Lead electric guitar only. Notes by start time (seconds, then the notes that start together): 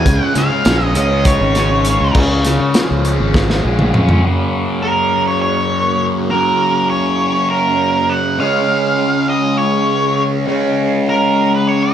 Already playing: G#5
0.24 F#5
0.38 F5
0.85 D#5
0.97 D#5
1.27 C#5
4.83 A#4
5.28 C#5
5.42 C#5
6.31 A#4
6.90 C#5
7.50 A#4
8.10 F#5
8.40 F5
9.29 D#5
9.57 C#5
11.09 A#4
11.55 B4
11.67 C#5
11.83 D#5